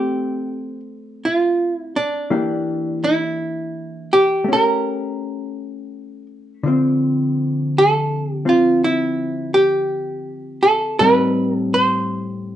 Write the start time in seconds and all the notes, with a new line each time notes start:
Already playing: F3 A3 C4 G4
1.25 F4
1.76 E4
1.96 D4
2.30 E3 A#3 D4 G4
3.04 E4
4.13 G4
4.44 A3 C#4
4.52 G4 A#4
6.63 D3 F3 C4
7.78 A4
8.33 G4
8.45 F3 C4 F4
8.84 E4
9.54 G4
10.63 A4
10.99 A2 G3 C4 D#4 B4
11.58 A4
11.74 C5